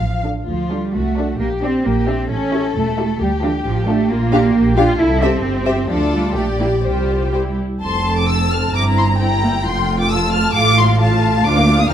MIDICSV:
0, 0, Header, 1, 6, 480
1, 0, Start_track
1, 0, Key_signature, -1, "minor"
1, 0, Tempo, 468750
1, 489, Time_signature, 2, 2, 24, 8
1, 1433, Tempo, 449102
1, 4320, Key_signature, -1, "major"
1, 6233, Tempo, 481928
1, 8153, Tempo, 453858
1, 12507, End_track
2, 0, Start_track
2, 0, Title_t, "Violin section"
2, 0, Program_c, 0, 48
2, 0, Note_on_c, 0, 77, 63
2, 226, Note_off_c, 0, 77, 0
2, 491, Note_on_c, 0, 65, 51
2, 929, Note_off_c, 0, 65, 0
2, 963, Note_on_c, 0, 66, 49
2, 1425, Note_off_c, 0, 66, 0
2, 1431, Note_on_c, 0, 67, 53
2, 1902, Note_off_c, 0, 67, 0
2, 1917, Note_on_c, 0, 67, 54
2, 2384, Note_on_c, 0, 69, 67
2, 2389, Note_off_c, 0, 67, 0
2, 3341, Note_off_c, 0, 69, 0
2, 3365, Note_on_c, 0, 67, 66
2, 4319, Note_off_c, 0, 67, 0
2, 4323, Note_on_c, 0, 65, 64
2, 4792, Note_on_c, 0, 67, 62
2, 4799, Note_off_c, 0, 65, 0
2, 5274, Note_off_c, 0, 67, 0
2, 5276, Note_on_c, 0, 69, 60
2, 5741, Note_off_c, 0, 69, 0
2, 5754, Note_on_c, 0, 67, 60
2, 6232, Note_on_c, 0, 65, 60
2, 6234, Note_off_c, 0, 67, 0
2, 6691, Note_on_c, 0, 67, 53
2, 6695, Note_off_c, 0, 65, 0
2, 7166, Note_off_c, 0, 67, 0
2, 7178, Note_on_c, 0, 67, 49
2, 7901, Note_off_c, 0, 67, 0
2, 8167, Note_on_c, 0, 84, 76
2, 8502, Note_off_c, 0, 84, 0
2, 8526, Note_on_c, 0, 86, 69
2, 8639, Note_on_c, 0, 88, 83
2, 8642, Note_off_c, 0, 86, 0
2, 8883, Note_off_c, 0, 88, 0
2, 8891, Note_on_c, 0, 89, 76
2, 9131, Note_off_c, 0, 89, 0
2, 9137, Note_on_c, 0, 86, 90
2, 9222, Note_off_c, 0, 86, 0
2, 9379, Note_on_c, 0, 84, 61
2, 9463, Note_off_c, 0, 84, 0
2, 9614, Note_on_c, 0, 82, 80
2, 10086, Note_off_c, 0, 82, 0
2, 10093, Note_on_c, 0, 84, 79
2, 10456, Note_off_c, 0, 84, 0
2, 10464, Note_on_c, 0, 86, 76
2, 10566, Note_on_c, 0, 88, 93
2, 10578, Note_off_c, 0, 86, 0
2, 10810, Note_on_c, 0, 89, 88
2, 10811, Note_off_c, 0, 88, 0
2, 11037, Note_on_c, 0, 86, 109
2, 11047, Note_off_c, 0, 89, 0
2, 11278, Note_off_c, 0, 86, 0
2, 11293, Note_on_c, 0, 84, 84
2, 11512, Note_on_c, 0, 81, 89
2, 11528, Note_off_c, 0, 84, 0
2, 11983, Note_off_c, 0, 81, 0
2, 11994, Note_on_c, 0, 86, 100
2, 12352, Note_off_c, 0, 86, 0
2, 12357, Note_on_c, 0, 87, 90
2, 12471, Note_on_c, 0, 89, 105
2, 12474, Note_off_c, 0, 87, 0
2, 12507, Note_off_c, 0, 89, 0
2, 12507, End_track
3, 0, Start_track
3, 0, Title_t, "Violin section"
3, 0, Program_c, 1, 48
3, 0, Note_on_c, 1, 77, 54
3, 227, Note_off_c, 1, 77, 0
3, 728, Note_on_c, 1, 69, 43
3, 731, Note_on_c, 1, 77, 44
3, 902, Note_off_c, 1, 69, 0
3, 904, Note_off_c, 1, 77, 0
3, 1210, Note_on_c, 1, 69, 46
3, 1211, Note_on_c, 1, 74, 46
3, 1380, Note_off_c, 1, 69, 0
3, 1380, Note_off_c, 1, 74, 0
3, 1682, Note_on_c, 1, 74, 47
3, 1688, Note_on_c, 1, 67, 48
3, 1856, Note_off_c, 1, 74, 0
3, 1859, Note_off_c, 1, 67, 0
3, 2154, Note_on_c, 1, 76, 52
3, 2156, Note_on_c, 1, 67, 50
3, 2335, Note_off_c, 1, 76, 0
3, 2336, Note_off_c, 1, 67, 0
3, 2637, Note_on_c, 1, 76, 49
3, 2638, Note_on_c, 1, 69, 48
3, 2819, Note_off_c, 1, 76, 0
3, 2820, Note_off_c, 1, 69, 0
3, 3125, Note_on_c, 1, 69, 52
3, 3127, Note_on_c, 1, 76, 54
3, 3305, Note_off_c, 1, 69, 0
3, 3306, Note_off_c, 1, 76, 0
3, 3605, Note_on_c, 1, 69, 58
3, 3606, Note_on_c, 1, 77, 56
3, 3782, Note_off_c, 1, 69, 0
3, 3783, Note_off_c, 1, 77, 0
3, 4078, Note_on_c, 1, 69, 58
3, 4078, Note_on_c, 1, 77, 59
3, 4257, Note_off_c, 1, 69, 0
3, 4257, Note_off_c, 1, 77, 0
3, 4559, Note_on_c, 1, 77, 54
3, 4563, Note_on_c, 1, 67, 55
3, 4670, Note_off_c, 1, 77, 0
3, 4673, Note_off_c, 1, 67, 0
3, 5033, Note_on_c, 1, 67, 54
3, 5036, Note_on_c, 1, 77, 57
3, 5147, Note_off_c, 1, 67, 0
3, 5148, Note_off_c, 1, 77, 0
3, 5515, Note_on_c, 1, 72, 53
3, 5516, Note_on_c, 1, 76, 52
3, 5625, Note_off_c, 1, 72, 0
3, 5625, Note_off_c, 1, 76, 0
3, 5981, Note_on_c, 1, 76, 54
3, 5984, Note_on_c, 1, 72, 53
3, 6098, Note_off_c, 1, 76, 0
3, 6100, Note_off_c, 1, 72, 0
3, 6235, Note_on_c, 1, 69, 57
3, 6235, Note_on_c, 1, 74, 51
3, 6664, Note_off_c, 1, 69, 0
3, 6665, Note_off_c, 1, 74, 0
3, 6692, Note_on_c, 1, 67, 49
3, 6697, Note_on_c, 1, 74, 47
3, 7166, Note_off_c, 1, 67, 0
3, 7170, Note_off_c, 1, 74, 0
3, 7176, Note_on_c, 1, 72, 49
3, 7178, Note_on_c, 1, 67, 46
3, 7652, Note_off_c, 1, 67, 0
3, 7654, Note_off_c, 1, 72, 0
3, 7664, Note_on_c, 1, 67, 41
3, 7666, Note_on_c, 1, 72, 44
3, 7743, Note_off_c, 1, 67, 0
3, 7745, Note_off_c, 1, 72, 0
3, 8151, Note_on_c, 1, 81, 68
3, 8606, Note_off_c, 1, 81, 0
3, 8641, Note_on_c, 1, 81, 65
3, 9117, Note_off_c, 1, 81, 0
3, 9123, Note_on_c, 1, 82, 67
3, 9608, Note_off_c, 1, 82, 0
3, 9608, Note_on_c, 1, 79, 65
3, 10568, Note_on_c, 1, 81, 68
3, 10576, Note_off_c, 1, 79, 0
3, 11041, Note_off_c, 1, 81, 0
3, 11044, Note_on_c, 1, 77, 74
3, 11513, Note_off_c, 1, 77, 0
3, 11525, Note_on_c, 1, 77, 73
3, 12453, Note_off_c, 1, 77, 0
3, 12473, Note_on_c, 1, 82, 88
3, 12507, Note_off_c, 1, 82, 0
3, 12507, End_track
4, 0, Start_track
4, 0, Title_t, "Viola section"
4, 0, Program_c, 2, 48
4, 244, Note_on_c, 2, 69, 46
4, 245, Note_on_c, 2, 62, 50
4, 428, Note_off_c, 2, 62, 0
4, 428, Note_off_c, 2, 69, 0
4, 722, Note_on_c, 2, 62, 48
4, 723, Note_on_c, 2, 65, 46
4, 899, Note_off_c, 2, 62, 0
4, 900, Note_off_c, 2, 65, 0
4, 1197, Note_on_c, 2, 66, 45
4, 1201, Note_on_c, 2, 62, 46
4, 1373, Note_off_c, 2, 66, 0
4, 1375, Note_off_c, 2, 62, 0
4, 1671, Note_on_c, 2, 62, 50
4, 1671, Note_on_c, 2, 67, 50
4, 1850, Note_off_c, 2, 62, 0
4, 1850, Note_off_c, 2, 67, 0
4, 2148, Note_on_c, 2, 67, 52
4, 2150, Note_on_c, 2, 62, 51
4, 2331, Note_off_c, 2, 67, 0
4, 2332, Note_off_c, 2, 62, 0
4, 2637, Note_on_c, 2, 64, 54
4, 2639, Note_on_c, 2, 67, 56
4, 2819, Note_off_c, 2, 64, 0
4, 2820, Note_off_c, 2, 67, 0
4, 3118, Note_on_c, 2, 64, 57
4, 3118, Note_on_c, 2, 67, 55
4, 3301, Note_off_c, 2, 64, 0
4, 3302, Note_off_c, 2, 67, 0
4, 3595, Note_on_c, 2, 65, 58
4, 3598, Note_on_c, 2, 62, 60
4, 3777, Note_off_c, 2, 65, 0
4, 3779, Note_off_c, 2, 62, 0
4, 4078, Note_on_c, 2, 62, 60
4, 4078, Note_on_c, 2, 65, 55
4, 4257, Note_off_c, 2, 62, 0
4, 4257, Note_off_c, 2, 65, 0
4, 4555, Note_on_c, 2, 62, 63
4, 4556, Note_on_c, 2, 67, 58
4, 4668, Note_off_c, 2, 62, 0
4, 4668, Note_off_c, 2, 67, 0
4, 5035, Note_on_c, 2, 67, 53
4, 5036, Note_on_c, 2, 62, 53
4, 5148, Note_off_c, 2, 62, 0
4, 5148, Note_off_c, 2, 67, 0
4, 5509, Note_on_c, 2, 67, 55
4, 5510, Note_off_c, 2, 67, 0
4, 5510, Note_on_c, 2, 67, 58
4, 5622, Note_off_c, 2, 67, 0
4, 5985, Note_on_c, 2, 67, 53
4, 6100, Note_off_c, 2, 67, 0
4, 6233, Note_on_c, 2, 62, 49
4, 6233, Note_on_c, 2, 65, 53
4, 6663, Note_off_c, 2, 65, 0
4, 6664, Note_off_c, 2, 62, 0
4, 6696, Note_on_c, 2, 62, 49
4, 6697, Note_on_c, 2, 67, 49
4, 6776, Note_off_c, 2, 62, 0
4, 6936, Note_on_c, 2, 64, 45
4, 7016, Note_off_c, 2, 64, 0
4, 7168, Note_off_c, 2, 67, 0
4, 7179, Note_on_c, 2, 67, 41
4, 7182, Note_on_c, 2, 65, 46
4, 7662, Note_off_c, 2, 67, 0
4, 7663, Note_off_c, 2, 65, 0
4, 7672, Note_on_c, 2, 64, 42
4, 7675, Note_on_c, 2, 67, 43
4, 7755, Note_off_c, 2, 67, 0
4, 7947, Note_off_c, 2, 64, 0
4, 8154, Note_on_c, 2, 60, 50
4, 8155, Note_on_c, 2, 69, 53
4, 9085, Note_off_c, 2, 60, 0
4, 9085, Note_off_c, 2, 69, 0
4, 9130, Note_on_c, 2, 60, 52
4, 9130, Note_on_c, 2, 64, 57
4, 9594, Note_off_c, 2, 60, 0
4, 9595, Note_off_c, 2, 64, 0
4, 9606, Note_on_c, 2, 60, 52
4, 9607, Note_on_c, 2, 64, 55
4, 9691, Note_off_c, 2, 60, 0
4, 9852, Note_on_c, 2, 58, 52
4, 9937, Note_off_c, 2, 58, 0
4, 10083, Note_off_c, 2, 64, 0
4, 10087, Note_on_c, 2, 57, 56
4, 10088, Note_on_c, 2, 65, 59
4, 11033, Note_off_c, 2, 57, 0
4, 11038, Note_off_c, 2, 65, 0
4, 11049, Note_on_c, 2, 57, 64
4, 11051, Note_on_c, 2, 65, 60
4, 11515, Note_off_c, 2, 57, 0
4, 11516, Note_off_c, 2, 65, 0
4, 11527, Note_on_c, 2, 57, 63
4, 11529, Note_on_c, 2, 65, 65
4, 11991, Note_off_c, 2, 57, 0
4, 11992, Note_off_c, 2, 65, 0
4, 12004, Note_on_c, 2, 62, 64
4, 12005, Note_on_c, 2, 65, 65
4, 12108, Note_off_c, 2, 62, 0
4, 12114, Note_off_c, 2, 65, 0
4, 12116, Note_on_c, 2, 58, 52
4, 12120, Note_on_c, 2, 62, 54
4, 12222, Note_off_c, 2, 62, 0
4, 12234, Note_on_c, 2, 65, 57
4, 12235, Note_on_c, 2, 62, 61
4, 12236, Note_off_c, 2, 58, 0
4, 12343, Note_off_c, 2, 62, 0
4, 12352, Note_on_c, 2, 58, 59
4, 12354, Note_off_c, 2, 65, 0
4, 12355, Note_on_c, 2, 62, 62
4, 12468, Note_on_c, 2, 63, 63
4, 12468, Note_on_c, 2, 72, 63
4, 12472, Note_off_c, 2, 58, 0
4, 12473, Note_off_c, 2, 62, 0
4, 12507, Note_off_c, 2, 63, 0
4, 12507, Note_off_c, 2, 72, 0
4, 12507, End_track
5, 0, Start_track
5, 0, Title_t, "Cello section"
5, 0, Program_c, 3, 48
5, 0, Note_on_c, 3, 53, 54
5, 231, Note_off_c, 3, 53, 0
5, 493, Note_on_c, 3, 53, 62
5, 712, Note_off_c, 3, 53, 0
5, 727, Note_on_c, 3, 55, 55
5, 961, Note_on_c, 3, 57, 63
5, 962, Note_off_c, 3, 55, 0
5, 1430, Note_on_c, 3, 58, 69
5, 1433, Note_off_c, 3, 57, 0
5, 1515, Note_off_c, 3, 58, 0
5, 1674, Note_on_c, 3, 60, 67
5, 1908, Note_off_c, 3, 60, 0
5, 1916, Note_on_c, 3, 58, 62
5, 2155, Note_off_c, 3, 58, 0
5, 2155, Note_on_c, 3, 60, 68
5, 2398, Note_off_c, 3, 60, 0
5, 2398, Note_on_c, 3, 61, 74
5, 2874, Note_off_c, 3, 61, 0
5, 2887, Note_on_c, 3, 57, 74
5, 3360, Note_off_c, 3, 57, 0
5, 3367, Note_on_c, 3, 55, 73
5, 3453, Note_off_c, 3, 55, 0
5, 3605, Note_on_c, 3, 52, 64
5, 3691, Note_off_c, 3, 52, 0
5, 3850, Note_on_c, 3, 53, 82
5, 4080, Note_off_c, 3, 53, 0
5, 4086, Note_on_c, 3, 57, 82
5, 4317, Note_off_c, 3, 57, 0
5, 4323, Note_on_c, 3, 58, 82
5, 5039, Note_off_c, 3, 58, 0
5, 5040, Note_on_c, 3, 65, 84
5, 5274, Note_off_c, 3, 65, 0
5, 5278, Note_on_c, 3, 64, 86
5, 5516, Note_off_c, 3, 64, 0
5, 5521, Note_on_c, 3, 60, 79
5, 6236, Note_off_c, 3, 60, 0
5, 6238, Note_on_c, 3, 53, 73
5, 6317, Note_off_c, 3, 53, 0
5, 6465, Note_on_c, 3, 55, 64
5, 6693, Note_off_c, 3, 55, 0
5, 6697, Note_on_c, 3, 57, 73
5, 6776, Note_off_c, 3, 57, 0
5, 6937, Note_on_c, 3, 58, 64
5, 7017, Note_off_c, 3, 58, 0
5, 7184, Note_on_c, 3, 55, 60
5, 7904, Note_off_c, 3, 55, 0
5, 8158, Note_on_c, 3, 41, 63
5, 9087, Note_off_c, 3, 41, 0
5, 9132, Note_on_c, 3, 43, 58
5, 10076, Note_off_c, 3, 43, 0
5, 10092, Note_on_c, 3, 41, 63
5, 11051, Note_on_c, 3, 45, 69
5, 11054, Note_off_c, 3, 41, 0
5, 11980, Note_off_c, 3, 45, 0
5, 11996, Note_on_c, 3, 38, 76
5, 12415, Note_off_c, 3, 38, 0
5, 12473, Note_on_c, 3, 39, 86
5, 12507, Note_off_c, 3, 39, 0
5, 12507, End_track
6, 0, Start_track
6, 0, Title_t, "Double bass section"
6, 0, Program_c, 4, 48
6, 0, Note_on_c, 4, 33, 56
6, 387, Note_off_c, 4, 33, 0
6, 490, Note_on_c, 4, 38, 53
6, 863, Note_off_c, 4, 38, 0
6, 962, Note_on_c, 4, 36, 56
6, 1335, Note_off_c, 4, 36, 0
6, 1438, Note_on_c, 4, 34, 57
6, 1816, Note_off_c, 4, 34, 0
6, 1907, Note_on_c, 4, 34, 58
6, 2292, Note_off_c, 4, 34, 0
6, 2390, Note_on_c, 4, 33, 62
6, 2778, Note_off_c, 4, 33, 0
6, 2876, Note_on_c, 4, 28, 57
6, 3262, Note_off_c, 4, 28, 0
6, 3358, Note_on_c, 4, 38, 66
6, 3739, Note_off_c, 4, 38, 0
6, 3836, Note_on_c, 4, 33, 65
6, 4216, Note_off_c, 4, 33, 0
6, 4316, Note_on_c, 4, 34, 60
6, 4716, Note_off_c, 4, 34, 0
6, 4785, Note_on_c, 4, 34, 60
6, 5191, Note_off_c, 4, 34, 0
6, 5270, Note_on_c, 4, 36, 63
6, 5669, Note_off_c, 4, 36, 0
6, 5747, Note_on_c, 4, 31, 57
6, 6149, Note_off_c, 4, 31, 0
6, 6235, Note_on_c, 4, 38, 54
6, 6665, Note_off_c, 4, 38, 0
6, 6694, Note_on_c, 4, 34, 51
6, 7172, Note_on_c, 4, 36, 48
6, 7178, Note_off_c, 4, 34, 0
6, 7944, Note_off_c, 4, 36, 0
6, 8150, Note_on_c, 4, 29, 61
6, 9083, Note_off_c, 4, 29, 0
6, 9122, Note_on_c, 4, 31, 61
6, 10072, Note_off_c, 4, 31, 0
6, 10091, Note_on_c, 4, 29, 60
6, 11051, Note_on_c, 4, 33, 63
6, 11054, Note_off_c, 4, 29, 0
6, 11980, Note_off_c, 4, 33, 0
6, 11997, Note_on_c, 4, 38, 75
6, 12416, Note_off_c, 4, 38, 0
6, 12471, Note_on_c, 4, 39, 77
6, 12507, Note_off_c, 4, 39, 0
6, 12507, End_track
0, 0, End_of_file